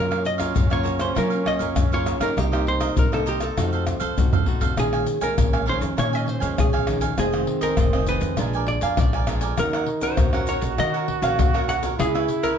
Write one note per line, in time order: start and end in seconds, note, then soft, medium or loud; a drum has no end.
0.00 0.47 F#2 medium
0.00 0.53 F#3 medium
0.00 0.35 A#3 medium
0.00 0.35 C#4 medium
0.00 2.39 C#4 loud
0.00 0.36 F4 medium
0.00 0.24 A#4 medium
0.11 0.23 A#4 medium
0.11 0.24 C#5 medium
0.11 0.24 F5 medium
0.11 pandeiro soft
0.11 tamborim medium
0.11 shaker soft
0.24 0.72 D#5 loud
0.24 muted cavaquinho stroke soft
0.24 pandeiro medium
0.24 shaker medium
0.38 0.66 A#3 medium
0.38 0.66 C#4 medium
0.38 0.66 F4 medium
0.38 0.53 A#4 medium
0.38 0.54 C#5 medium
0.38 0.53 F5 medium
0.38 pandeiro medium
0.38 tamborim medium
0.38 shaker medium
0.38 surdo soft
0.54 1.08 F#2 medium
0.54 1.13 C#3 medium
0.54 0.69 F#4 soft
0.54 0.69 A#4 medium
0.54 0.69 C#5 soft
0.54 0.69 F5 medium
0.54 pandeiro medium
0.54 shaker medium
0.54 surdo loud
0.70 1.12 A#3 medium
0.70 1.12 C#4 medium
0.70 1.12 F4 medium
0.70 0.83 A#4 medium
0.70 0.83 C#5 medium
0.70 1.01 C#5 medium
0.70 0.84 F5 medium
0.70 pandeiro soft
0.70 tamborim medium
0.70 shaker soft
0.83 1.14 F#4 medium
0.83 1.14 A#4 medium
0.83 1.14 C#5 medium
0.83 1.14 F5 medium
0.83 pandeiro medium
0.83 shaker medium
0.83 surdo soft
0.99 1.17 C5 medium
0.99 pandeiro medium
0.99 tamborim medium
0.99 shaker medium
1.15 1.73 F#3 medium
1.15 1.55 F#3 medium
1.15 1.41 A#3 medium
1.15 1.42 C#4 medium
1.15 1.42 F4 medium
1.15 1.29 F#4 soft
1.15 1.30 A#4 medium
1.15 1.45 A#4 medium
1.15 1.30 C#5 soft
1.15 1.29 F5 medium
1.15 pandeiro medium
1.15 tamborim medium
1.15 shaker medium
1.15 surdo medium
1.30 1.45 A#4 medium
1.30 1.45 C#5 medium
1.30 1.45 F5 medium
1.30 pandeiro soft
1.30 shaker soft
1.45 1.86 A#3 medium
1.45 1.86 C#4 medium
1.45 1.87 F4 medium
1.45 1.93 D#5 loud
1.45 muted cavaquinho stroke soft
1.45 pandeiro medium
1.45 tamborim medium
1.45 surdo soft
1.59 1.73 F#2 medium
1.59 1.90 A#4 medium
1.59 1.90 C#5 medium
1.59 1.89 F5 medium
1.59 pandeiro medium
1.59 shaker medium
1.59 surdo soft
1.76 2.15 F#2 medium
1.76 2.34 C#3 medium
1.76 pandeiro medium
1.76 tamborim medium
1.76 shaker medium
1.76 surdo loud
1.92 2.17 A#3 medium
1.92 2.18 C#4 medium
1.92 2.18 F4 medium
1.92 2.06 A#4 medium
1.92 2.06 C#5 medium
1.92 2.24 C#5 medium
1.92 2.06 F5 medium
1.92 pandeiro soft
1.92 shaker soft
2.06 2.21 F#4 soft
2.06 2.21 A#4 soft
2.06 2.20 C#5 soft
2.06 2.19 F5 soft
2.06 pandeiro medium
2.06 tamborim medium
2.06 shaker medium
2.20 2.34 F#2 medium
2.20 2.51 A#3 medium
2.20 2.51 D#4 medium
2.20 2.52 G4 medium
2.20 2.36 A#4 medium
2.20 2.39 A#4 medium
2.20 2.35 C#5 medium
2.20 2.35 F5 medium
2.20 pandeiro medium
2.20 tamborim medium
2.20 shaker medium
2.20 surdo soft
2.36 2.88 C2 medium
2.36 2.94 C3 medium
2.36 2.50 D#4 soft
2.36 3.31 D#4 loud
2.36 2.68 G4 medium
2.36 2.51 A#4 soft
2.36 2.51 C5 soft
2.36 2.51 D#5 soft
2.36 pandeiro medium
2.36 tamborim medium
2.36 shaker medium
2.36 surdo medium
2.52 3.08 A#3 medium
2.52 3.08 D#4 medium
2.52 3.08 G4 medium
2.52 2.65 A#4 medium
2.52 2.65 C5 medium
2.52 2.66 D#5 medium
2.52 pandeiro soft
2.52 tamborim medium
2.52 shaker soft
2.66 2.99 C5 medium
2.66 muted cavaquinho stroke soft
2.66 pandeiro medium
2.80 2.96 A#4 medium
2.80 2.95 C5 medium
2.80 2.95 D#5 medium
2.80 pandeiro medium
2.80 tamborim medium
2.80 shaker medium
2.80 surdo soft
2.96 3.48 C2 medium
2.96 3.54 G2 medium
2.96 3.10 D#4 soft
2.96 3.11 A#4 soft
2.96 3.12 A#4 medium
2.96 3.11 C5 soft
2.96 3.11 D#5 medium
2.96 pandeiro medium
2.96 shaker medium
2.96 surdo loud
3.12 3.53 A#3 medium
3.12 3.53 D#4 medium
3.12 3.53 G4 medium
3.12 3.28 A4 medium
3.12 3.25 A#4 medium
3.12 3.25 C5 medium
3.12 3.26 D#5 medium
3.12 pandeiro soft
3.12 tamborim medium
3.12 shaker soft
3.26 3.55 D#4 medium
3.26 3.43 G4 medium
3.26 3.56 A#4 medium
3.26 3.56 C5 medium
3.26 3.56 D#5 medium
3.26 pandeiro medium
3.26 shaker medium
3.26 surdo soft
3.40 4.48 A4 medium
3.40 pandeiro medium
3.40 tamborim medium
3.40 shaker medium
3.57 3.96 F2 medium
3.57 4.15 F3 medium
3.57 3.96 A3 medium
3.57 4.44 C4 medium
3.57 3.71 D#4 soft
3.57 3.96 D#4 medium
3.57 3.97 F#4 medium
3.57 3.71 A4 medium
3.57 3.71 C5 soft
3.57 3.72 F5 medium
3.57 pandeiro medium
3.57 tamborim medium
3.57 shaker medium
3.57 surdo medium
3.73 3.85 A4 medium
3.73 3.86 C5 medium
3.73 3.86 F5 medium
3.73 pandeiro soft
3.73 shaker soft
3.87 muted cavaquinho stroke soft
3.87 pandeiro medium
3.87 tamborim medium
3.87 shaker medium
3.87 surdo soft
4.00 4.14 F2 medium
4.00 4.31 A4 medium
4.00 4.31 C5 medium
4.00 4.30 F5 medium
4.00 pandeiro medium
4.00 shaker medium
4.00 surdo soft
4.17 4.56 F2 medium
4.17 4.75 C3 soft
4.17 4.35 A3 soft
4.17 4.35 D#4 soft
4.17 4.36 F#4 medium
4.17 pandeiro medium
4.17 shaker medium
4.17 surdo loud
4.33 4.47 A4 soft
4.33 4.47 C5 medium
4.33 4.47 F5 medium
4.33 surdo medium
4.33 pandeiro soft
4.33 shaker soft
4.46 4.75 A3 soft
4.46 4.61 D#4 soft
4.46 4.75 D#4 soft
4.46 4.75 F#4 medium
4.46 4.62 A4 soft
4.46 4.61 C5 soft
4.46 4.60 F5 soft
4.46 pandeiro medium
4.46 surdo medium
4.61 4.75 F2 medium
4.61 4.77 A4 medium
4.61 4.76 C5 medium
4.61 4.76 F5 medium
4.61 pandeiro medium
4.61 shaker medium
4.61 surdo medium
4.77 5.03 A#1 medium
4.77 5.35 A#2 soft
4.77 5.18 D#3 soft
4.77 5.18 G#3 soft
4.77 7.19 C#4 medium
4.77 5.18 C#4 soft
4.77 5.23 G#4 medium
4.77 4.92 A#4 soft
4.77 4.92 C#5 soft
4.77 4.92 F5 soft
4.77 4.92 G#5 soft
4.77 pandeiro medium
4.77 tamborim medium
4.77 shaker medium
4.77 surdo medium
4.93 5.06 C#5 soft
4.93 5.06 F5 medium
4.93 5.07 G#5 medium
4.93 pandeiro soft
4.93 tamborim medium
4.93 shaker soft
5.06 muted cavaquinho stroke soft
5.06 pandeiro medium
5.06 shaker medium
5.21 5.62 D#3 medium
5.21 5.62 G#3 medium
5.21 5.63 C#4 medium
5.21 5.65 A#4 medium
5.21 5.37 C#5 medium
5.21 5.36 F5 medium
5.21 5.36 G#5 medium
5.21 pandeiro medium
5.21 shaker medium
5.21 surdo soft
5.38 5.76 A#1 medium
5.38 5.95 F2 medium
5.38 5.52 A#4 soft
5.38 5.52 C#5 medium
5.38 5.52 F5 medium
5.38 5.52 G#5 medium
5.38 pandeiro medium
5.38 tamborim medium
5.38 shaker medium
5.38 surdo loud
5.53 5.65 C#5 medium
5.53 5.66 F5 medium
5.53 5.66 G#5 medium
5.53 pandeiro soft
5.53 tamborim medium
5.53 shaker soft
5.66 5.93 D#3 soft
5.66 5.93 G#3 medium
5.66 5.93 C#4 medium
5.66 5.95 A#4 medium
5.66 5.77 C5 medium
5.66 5.96 C#5 medium
5.66 5.96 F5 medium
5.66 5.96 G#5 medium
5.66 pandeiro medium
5.81 5.95 F2 medium
5.81 pandeiro medium
5.81 shaker medium
5.81 surdo soft
5.97 6.55 A#2 medium
5.97 6.36 A#2 medium
5.97 6.38 D#3 medium
5.97 6.39 G#3 medium
5.97 6.39 C#4 medium
5.97 6.11 A#4 soft
5.97 6.11 C#5 soft
5.97 6.15 C#5 medium
5.97 6.12 F5 soft
5.97 6.12 G#5 soft
5.97 pandeiro medium
5.97 tamborim medium
5.97 shaker medium
5.97 surdo medium
6.13 6.25 C#5 soft
6.13 6.29 D#5 medium
6.13 6.25 F5 medium
6.13 6.26 G#5 medium
6.13 pandeiro soft
6.13 shaker soft
6.26 6.59 C5 medium
6.26 muted cavaquinho stroke soft
6.26 pandeiro medium
6.40 6.55 F2 medium
6.40 6.83 D#3 medium
6.40 6.83 G#3 medium
6.40 6.83 C#4 medium
6.40 6.71 C#5 medium
6.40 6.71 F5 medium
6.40 6.70 G#5 medium
6.40 pandeiro medium
6.40 shaker medium
6.40 surdo soft
6.58 7.09 A#1 medium
6.58 7.15 F2 medium
6.58 7.01 G#4 medium
6.58 pandeiro medium
6.58 tamborim medium
6.58 shaker medium
6.58 surdo loud
6.73 6.86 C#5 medium
6.73 6.86 F5 medium
6.73 6.87 G#5 medium
6.73 pandeiro soft
6.73 tamborim medium
6.73 shaker soft
6.87 7.13 D#3 medium
6.87 7.13 G#3 medium
6.87 7.13 C#4 medium
6.87 7.01 A#4 soft
6.87 7.01 C#5 soft
6.87 7.01 F5 soft
6.87 7.00 G#5 medium
6.87 pandeiro medium
6.87 tamborim medium
6.87 shaker medium
7.01 7.17 C#5 medium
7.01 7.16 F5 medium
7.01 7.16 G#5 medium
7.01 pandeiro medium
7.01 shaker medium
7.01 surdo soft
7.17 7.43 F1 medium
7.17 7.75 F2 medium
7.17 7.27 D#3 medium
7.17 7.27 G#3 medium
7.17 8.40 C4 medium
7.17 7.28 C4 medium
7.17 7.32 F4 soft
7.17 7.32 G#4 soft
7.17 7.62 G#4 medium
7.17 7.32 C5 soft
7.17 7.31 D#5 soft
7.17 pandeiro medium
7.17 tamborim medium
7.17 shaker medium
7.17 surdo medium
7.32 7.74 D#3 medium
7.32 7.74 G#3 medium
7.32 7.74 C4 medium
7.32 7.47 G#4 medium
7.32 7.47 C5 medium
7.32 7.47 D#5 medium
7.32 pandeiro soft
7.32 tamborim medium
7.32 shaker soft
7.47 muted cavaquinho stroke soft
7.47 pandeiro medium
7.61 7.77 G#4 medium
7.61 8.05 A#4 medium
7.61 7.77 C5 medium
7.61 7.76 D#5 medium
7.61 pandeiro medium
7.61 shaker medium
7.61 surdo soft
7.77 8.16 F1 medium
7.77 8.35 C3 medium
7.77 7.87 D#3 medium
7.77 7.87 G#3 medium
7.77 7.88 C4 medium
7.77 7.92 F4 soft
7.77 7.92 G#4 soft
7.77 7.93 C5 soft
7.77 7.92 D#5 medium
7.77 pandeiro medium
7.77 tamborim medium
7.77 shaker medium
7.77 surdo loud
7.93 8.34 D#3 medium
7.93 8.34 G#3 medium
7.93 8.34 C4 medium
7.93 8.07 G#4 medium
7.93 8.07 C5 medium
7.93 8.07 D#5 medium
7.93 pandeiro soft
7.93 tamborim medium
7.93 shaker soft
8.07 8.37 F4 medium
8.07 8.37 G#4 medium
8.07 8.65 B4 medium
8.07 8.37 C5 medium
8.07 8.38 D#5 medium
8.07 pandeiro medium
8.07 shaker medium
8.21 8.35 F2 medium
8.21 pandeiro medium
8.21 shaker medium
8.21 surdo soft
8.37 8.77 A#1 medium
8.37 8.95 A#2 medium
8.37 8.77 G#3 medium
8.37 8.77 B3 medium
8.37 9.32 D4 medium
8.37 8.52 D4 medium
8.37 8.77 D4 medium
8.37 8.53 A#4 medium
8.37 8.53 D5 soft
8.37 8.53 G#5 medium
8.37 pandeiro medium
8.37 tamborim medium
8.37 shaker medium
8.37 surdo medium
8.53 8.67 A#4 medium
8.53 8.67 D5 medium
8.53 8.67 G#5 medium
8.53 pandeiro soft
8.53 shaker soft
8.67 8.82 D5 medium
8.67 muted cavaquinho stroke soft
8.67 pandeiro medium
8.67 surdo soft
8.81 8.95 F2 medium
8.81 9.13 A#4 medium
8.81 9.12 D5 medium
8.81 8.99 F5 medium
8.81 9.12 G#5 medium
8.81 pandeiro medium
8.81 shaker medium
8.81 surdo soft
8.97 9.49 A#1 medium
8.97 9.55 F3 medium
8.97 9.24 G#3 soft
8.97 9.24 B3 medium
8.97 9.24 D4 medium
8.97 9.44 D5 medium
8.97 pandeiro medium
8.97 tamborim medium
8.97 shaker medium
8.97 surdo loud
9.13 9.27 A#4 medium
9.13 9.28 D5 medium
9.13 9.28 G#5 medium
9.13 pandeiro soft
9.13 tamborim medium
9.13 shaker soft
9.27 9.56 G#3 medium
9.27 9.56 B3 medium
9.27 9.42 D4 soft
9.27 9.56 D4 medium
9.27 9.42 A#4 soft
9.27 9.42 D5 medium
9.27 9.41 G#5 medium
9.27 pandeiro medium
9.27 tamborim medium
9.27 shaker medium
9.41 9.57 A#4 medium
9.41 9.57 D5 medium
9.41 9.57 G#5 medium
9.41 pandeiro medium
9.41 shaker medium
9.41 surdo soft
9.57 9.84 D#2 medium
9.57 10.16 D#3 medium
9.57 9.87 C#4 soft
9.57 10.20 D#4 loud
9.57 9.72 D#4 soft
9.57 9.87 F#4 soft
9.57 9.73 A#4 soft
9.57 10.03 A#4 medium
9.57 9.87 A#4 medium
9.57 9.73 C#5 soft
9.57 9.73 F#5 medium
9.57 pandeiro medium
9.57 tamborim medium
9.57 shaker medium
9.57 surdo medium
9.73 9.88 A#4 soft
9.73 9.88 C#5 medium
9.73 9.88 F#5 medium
9.73 pandeiro soft
9.73 tamborim medium
9.73 shaker soft
9.86 muted cavaquinho stroke soft
9.86 pandeiro medium
10.01 10.28 C#4 medium
10.01 10.28 F#4 medium
10.01 10.28 A#4 medium
10.01 10.17 A#4 medium
10.01 10.48 C5 medium
10.01 10.17 C#5 medium
10.01 10.17 F#5 medium
10.01 pandeiro medium
10.01 shaker medium
10.01 surdo soft
10.17 10.57 D#2 medium
10.17 10.76 A#2 medium
10.17 10.32 D#4 soft
10.17 12.01 F#4 loud
10.17 10.32 A#4 soft
10.17 10.33 C#5 medium
10.17 10.33 F#5 medium
10.17 pandeiro medium
10.17 tamborim medium
10.17 shaker medium
10.17 surdo loud
10.33 10.74 C#4 medium
10.33 10.74 F#4 medium
10.33 10.74 A#4 medium
10.33 10.48 A#4 medium
10.33 10.48 C#5 medium
10.33 10.48 F#5 medium
10.33 pandeiro soft
10.33 tamborim medium
10.33 shaker soft
10.47 10.77 D#4 medium
10.47 10.78 A#4 medium
10.47 10.57 C#5 loud
10.47 10.78 C#5 medium
10.47 10.78 F#5 medium
10.47 pandeiro medium
10.47 shaker medium
10.62 10.76 A#1 medium
10.62 pandeiro medium
10.62 shaker medium
10.62 surdo soft
10.78 11.35 D#3 medium
10.78 11.17 D#3 medium
10.78 11.19 C#4 medium
10.78 10.92 D#4 soft
10.78 11.19 F#4 medium
10.78 10.93 A#4 medium
10.78 11.19 A#4 medium
10.78 10.93 C#5 medium
10.78 11.23 D#5 loud
10.78 10.93 F#5 medium
10.78 pandeiro medium
10.78 tamborim medium
10.78 shaker medium
10.78 surdo medium
10.94 11.07 A#4 medium
10.94 11.07 C#5 medium
10.94 11.07 F#5 medium
10.94 pandeiro soft
10.94 shaker soft
11.07 muted cavaquinho stroke soft
11.07 pandeiro medium
11.07 surdo soft
11.22 11.36 A#1 medium
11.22 11.48 C#4 medium
11.22 11.48 F#4 medium
11.22 11.49 A#4 medium
11.22 11.53 A#4 medium
11.22 11.52 C#5 medium
11.22 11.66 F5 medium
11.22 11.52 F#5 medium
11.22 pandeiro medium
11.22 shaker medium
11.22 surdo soft
11.38 11.90 D#2 medium
11.38 11.95 A#2 medium
11.38 pandeiro medium
11.38 tamborim medium
11.38 shaker medium
11.38 surdo loud
11.53 11.94 C#4 medium
11.53 11.94 F#4 medium
11.53 11.94 A#4 medium
11.53 11.68 A#4 medium
11.53 11.68 C#5 medium
11.53 11.68 F#5 medium
11.53 pandeiro soft
11.53 tamborim medium
11.53 shaker soft
11.68 11.82 D#4 soft
11.68 11.83 A#4 soft
11.68 11.83 C#5 medium
11.68 12.00 F#5 medium
11.68 11.82 F#5 medium
11.68 pandeiro medium
11.68 tamborim medium
11.68 shaker medium
11.83 11.98 A#4 medium
11.83 11.98 C#5 medium
11.83 11.97 F#5 medium
11.83 pandeiro medium
11.83 shaker medium
11.83 surdo soft
11.98 12.25 C#2 medium
11.98 12.56 C#3 medium
11.98 12.08 B3 medium
11.98 12.13 E4 medium
11.98 12.08 E4 medium
11.98 12.58 E4 loud
11.98 12.08 G#4 medium
11.98 12.41 G#4 medium
11.98 12.13 B4 soft
11.98 12.13 C#5 medium
11.98 12.13 E5 medium
11.98 pandeiro medium
11.98 tamborim medium
11.98 shaker medium
11.98 surdo medium
12.14 12.54 B3 medium
12.14 12.55 E4 medium
12.14 12.55 G#4 medium
12.14 12.29 B4 medium
12.14 12.29 C#5 medium
12.14 12.28 E5 medium
12.14 pandeiro soft
12.14 tamborim medium
12.14 shaker soft
12.28 muted cavaquinho stroke soft
12.28 pandeiro medium
12.28 shaker medium
12.43 12.58 A#4 medium
12.43 12.58 B4 soft
12.43 12.58 C#5 medium
12.43 12.57 E5 medium
12.43 pandeiro medium
12.43 shaker medium
12.43 surdo soft